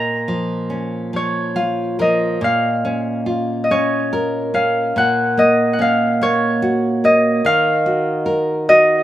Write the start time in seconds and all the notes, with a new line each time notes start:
Already playing: A#2 D#5 F5 A#5
0.28 F3
0.70 C#4
1.13 F3 C#5
1.56 F4 F5
1.99 F3 A#4 D#5
2.41 A#2 F5
2.85 C#4
3.26 F4
3.64 D#5
3.71 C#4 C#5
4.13 A#4
4.54 C#4 F5
4.96 A#2 F#5
5.37 A#3 D#5
5.73 F#5
5.79 C#4 F5
6.21 A#3 C#5
6.62 F#4
7.04 A#3 D#5
7.45 D#3 F5
7.86 F#4
8.26 A#4
8.69 F#4 D#5